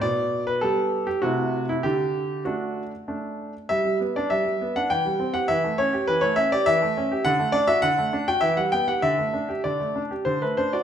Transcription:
<<
  \new Staff \with { instrumentName = "Grand piano" } { \time 3/4 \key g \major \tempo 4 = 100 d''8. b'16 a'8. g'16 fis'8. e'16 | g'4 fis'4 r4 | e''8. d''16 e''8. fis''16 g''8. fis''16 | e''8 cis''8 b'16 cis''16 e''16 d''16 e''4 |
fis''8 d''16 e''16 fis''8. g''16 e''16 fis''16 g''16 fis''16 | e''4 d''4 c''16 b'16 c''16 d''16 | }
  \new Staff \with { instrumentName = "Grand piano" } { \time 3/4 \key g \major b,4 <g b g'>4 <c a e'>4 | d4 <a d'>4 <a d'>4 | g16 g16 b16 d'16 g16 g16 b16 d'16 e16 g16 c'16 g'16 | e16 a16 cis'16 g'16 e16 a16 cis'16 g'16 e16 a16 cis'16 g'16 |
d16 a16 d'16 fis'16 d16 a16 d'16 fis'16 e16 g16 b16 g'16 | d16 a16 d'16 g'16 d16 a16 d'16 g'16 d16 a16 d'16 fis'16 | }
>>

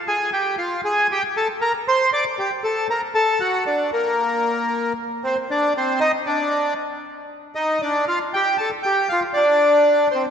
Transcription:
\new Staff \with { instrumentName = "Bandoneon" } { \time 4/4 \key d \phrygian \tempo 4 = 116 <aes' aes''>8 <g' g''>8 <f' f''>8 <aes' aes''>8 <g' g''>8 <a' a''>8 <bes' bes''>8 <c'' c'''>8 | <d'' d'''>8 <g' g''>8 <a' a''>8 <bes' bes''>8 <a' a''>8 <fis' fis''>8 <d' d''>8 <bes bes'>8~ | <bes bes'>4. r8 <c' c''>8 <d' d''>8 <c' c''>8 <ees' ees''>8 | <d' d''>4 r4. <ees' ees''>8 <d' d''>8 <f' f''>8 |
<g' g''>8 <a' a''>8 <g' g''>8 <f' f''>8 <d' d''>4. <c' c''>8 | }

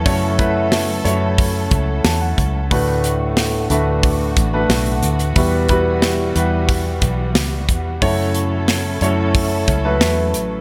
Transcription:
<<
  \new Staff \with { instrumentName = "Grand piano" } { \time 4/4 \key fis \phrygian \tempo 4 = 90 <a e' fis' cis''>16 r16 <a e' fis' b'>8. r16 <a e' fis' cis''>4. a''16 fis''8. | <a d' fis' b'>4 r8 <a d' fis' b'>4 r16 <a d' fis' b'>4 r16 | <g e' fis' b'>16 r16 <g e' fis' b'>8. r16 <g e' fis' b'>4. r4 | <a e' fis' cis''>4 r8 <a e' fis' cis''>4 r16 <a e' fis' b'>4 r16 | }
  \new Staff \with { instrumentName = "Grand piano" } { \clef bass \time 4/4 \key fis \phrygian cis4. r2 r8 | a,4. r2 r8 | b,4. r2 r8 | cis4. r2 r8 | }
  \new Staff \with { instrumentName = "String section" } { \time 4/4 \key fis \phrygian << { <fis cis' a'>1 | <d a fis'>1 | <e g>1 | <fis cis' a'>1 | } \\ { e'1 | b1~ | b1 | e'1 | } >> }
  \new Staff \with { instrumentName = "Fingered electric bass" } { \clef bass \time 4/4 \key fis \phrygian fis,4. fis,4 cis,8 e,8 cis,8 | d,4. d,4 a,,8 b,,8 d,8 | e,4. e,4 b,,8 cis,8 e,8 | fis,4. fis,4 cis,8 e,8 a,,8 | }
  \new DrumStaff \with { instrumentName = "Drums" } \drummode { \time 4/4 <hho hhp bd>8 <hho hhp bd>8 <hho hhp sn>8 <hho hhp>8 <hho hhp bd>8 <hho hhp bd>8 <hho hhp sn>8 <hho hhp bd>8 | <hho hhp bd>8 <hho hhp>8 <hho hhp sn>8 <hho hhp>8 <hho hhp bd>8 <hho hhp bd>8 <hho hhp sn>16 hho16 <hho hhp>16 hhp16 | <hho hhp bd>8 <hho hhp bd>8 <hho hhp sn>8 <hho hhp>8 <hho hhp bd>8 <hho hhp bd>8 <hho hhp sn>8 <hho hhp bd>8 | <hho hhp bd>8 <hho hhp>8 <hho hhp sn>8 <hho hhp>8 <hho hhp bd>8 <hho hhp bd>8 <hho hhp sn>8 <hho hhp>8 | }
>>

